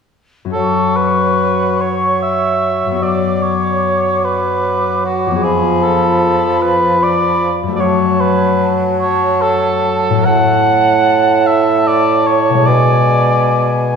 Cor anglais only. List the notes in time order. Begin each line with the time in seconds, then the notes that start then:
0.53 A4
0.97 B4
1.81 C#5
2.22 E5
3.03 D5
3.43 C#5
4.25 B4
5.05 F#4
5.44 G#4
5.83 A4
6.63 B4
7.03 D5
7.76 D5
7.81 C#5
8.20 B4
8.99 C#5
9.42 A4
10.25 F#5
11.47 E5
11.87 D5
12.27 C#5
12.67 D5